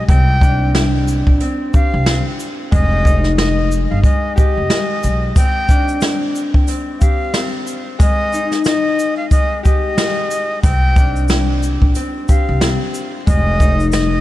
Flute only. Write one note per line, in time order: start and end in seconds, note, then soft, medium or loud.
0.07 0.89 G5 loud
1.74 2.23 F5 medium
2.73 3.35 D#5 loud
3.36 3.86 D#5 loud
3.90 4.02 F5 medium
4.04 4.34 D#5 medium
4.38 5.32 D#5 medium
5.36 6.18 G5 loud
6.99 7.49 F5 medium
8.01 8.63 D#5 loud
8.65 9.15 D#5 medium
9.17 9.30 F5 medium
9.31 9.61 D#5 loud
9.65 10.60 D#5 medium
10.62 11.44 G5 loud
12.29 12.78 F5 medium
13.28 13.89 D#5 loud
13.91 14.21 D#5 loud